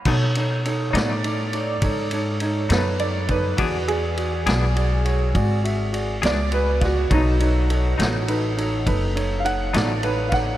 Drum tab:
CC |x-----------|------------|------------|
RD |-xxxxxxxxxxx|xxxxxxxxxxxx|xxxxxxxxxxxx|
SD |---o-----o--|---o-----o-o|---o-----o-o|
BD |o-----o----o|o-----o----o|o-----o----o|